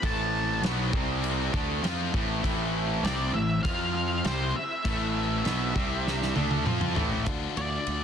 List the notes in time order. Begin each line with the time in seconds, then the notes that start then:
Already playing: A3 C4 E4 C5
0.02 A1 A2 E3 A3 A5, kick, crash
0.62 B1 B2 F#3 B3, snare, crash
0.92 C2 C3 G3 C4 G4, kick
1.24 crash
1.52 D2 D3 A3 D4 E4, kick
1.82 F2 F3 C4 F4, snare, crash
2.13 A1 A2 E3 A3, kick
2.44 A1 A2 E3 A3, kick, crash
3.03 C2 C3 G3 C4 D5, snare, crash
3.33 A1 A2 E3 E5
3.63 F2 F3 C4 F4 F5, kick, crash
3.95 F5
4.24 C2 C3 G3 A3 C4 E4 C5, snare, crash
4.55 E5, muted distorted electric guitar stroke, muted picked electric bass stroke
4.85 A1 A2 E3 A3, kick, crash
5.45 B1 B2 F#3 B3, snare, crash
5.75 C2 C3 G3 C4 G4 C5, kick
6.07 snare
6.22 snare
6.36 D2 C3 D3 A3 D4 E4 C5, high tom
6.51 high tom
6.64 F2 F3 C4 F4, mid tom
6.81 mid tom
6.94 A1 A2 E3 A3, floor tom
7.12 floor tom
7.24 D2 D3 A3 D4 F4, kick, ride
7.57 D2 D3 D5, ride
7.87 D2, ride